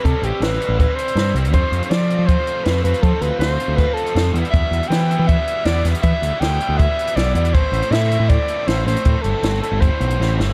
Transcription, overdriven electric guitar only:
\new Staff \with { instrumentName = "Overdriven electric guitar" } { \clef bass \time 4/4 \key e \phrygian \tempo 4 = 160 <c e g c' e'>4 <c e g c' e'>8 <c e g c' e'>8 <c e g c' e'>4 <c e g c' e'>8 <c e g c' e'>8 | <f, c f a c' f'>4 <f, c f a c' f'>8 <f, c f a c' f'>8 <f, c f a c' f'>4 <f, c f a c' f'>8 <f, c f a c' f'>8 | <f, c f a c' f'>4 <f, c f a c' f'>8 <f, c f a c' f'>8 <f, c f a c' f'>4 <f, c f a c' f'>8 <e, b, e g b e'>8 | <e, b, e g b e'>4 <e, b, e g b e'>8 <e, b, e g b e'>8 <e, b, e g b e'>4 <e, b, e g b e'>8 <e, b, e g b e'>8 |
<e, b, e g b e'>4 <e, b, e g b e'>8 <e, b, e g b e'>8 <e, b, e g b e'>4 <e, b, e g b e'>8 <e, b, e g b e'>8 | <a, e a c' e'>4 <a, e a c' e'>8 <a, e a c' e'>8 <a, e a c' e'>4 <a, e a c' e'>8 <a, e a c' e'>8 | <a, e a c' e'>4 <a, e a c' e'>8 <a, e a c' e'>8 <a, e a c' e'>4 <a, e a c' e'>8 <a, e a c' e'>8 | }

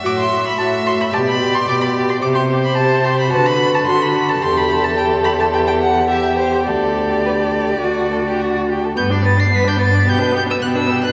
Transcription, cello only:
\new Staff \with { instrumentName = "Cello" } { \clef bass \time 4/4 \key g \major \tempo 4 = 109 a,4 a,4 b,4 b,4 | c4 c4 d4 d4 | e,1 | d,2 d,4. r8 |
g,4 g,4 b,4 b,4 | }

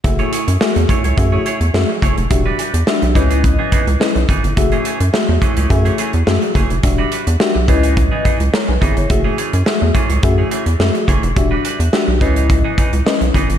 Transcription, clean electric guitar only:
\new Staff \with { instrumentName = "Clean electric guitar" } { \time 4/4 \key fis \minor \tempo 4 = 106 r16 <a e' gis' cis''>16 <a e' gis' cis''>16 r8. <a e' gis' cis''>16 <a e' gis' cis''>16 r16 <a e' gis' cis''>16 <a e' gis' cis''>16 r8. <a e' gis' cis''>16 r16 | r16 <g d' fis' b'>16 <g d' fis' b'>16 r8. <e b dis' gis'>16 <e b dis' gis'>16 r16 <e b dis' gis'>16 <e b dis' gis'>16 r8. <e b dis' gis'>16 r16 | r16 <e a cis' gis'>16 <e a cis' gis'>16 r8. <e a cis' gis'>16 <e a cis' gis'>16 r16 <e a cis' gis'>16 <e a cis' gis'>16 r8. <e a cis' gis'>16 r16 | r16 <g d' fis' b'>16 <g d' fis' b'>16 r8. <e b dis' gis'>16 <e b dis' gis'>16 r16 <e b dis' gis'>16 <e b dis' gis'>16 r8. <e b dis' gis'>16 r16 |
r16 <e a cis' gis'>16 <e a cis' gis'>16 r8. <e a cis' gis'>16 <e a cis' gis'>16 r16 <e a cis' gis'>16 <e a cis' gis'>16 r8. <e a cis' gis'>16 r16 | r16 <g d' fis' b'>16 <g d' fis' b'>16 r8. <e b dis' gis'>16 <e b dis' gis'>16 r16 <e b dis' gis'>16 <e b dis' gis'>16 r8. <e b dis' gis'>16 r16 | }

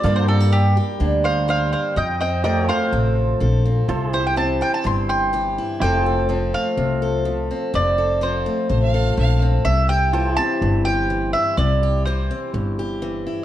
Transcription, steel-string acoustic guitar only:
\new Staff \with { instrumentName = "Steel-string acoustic guitar" } { \time 4/4 \key f \major \tempo 4 = 125 << { <g bes d' g'>8 c'16 d'16 bes8 g'8 d'4 g'8 d'8 | r8 c'8 a8 a'8 c'4 a'8 c'8~ | c'8 e'8 c'8 g'8 e'4 g'8 e'8 | <f a c' a'>8 a'8 c'8 a4 a'4 c'8 |
c'8 a'8 c'8 a4 a'4 c'8 | e'8 g'8 e'8 c'4 g'4 e'8 | e'8 g'8 e'8 c'4 g'4 e'8 | } \\ { g,4 g4 d4 g4 | f,4 f4 c4 f4 | c4 e4 g,4 e4 | f,4 f4 c4 f4 |
f,4 f4 c4 f4 | c4 e4 g,4 e4 | c4 e4 g,4 e4 | } >> }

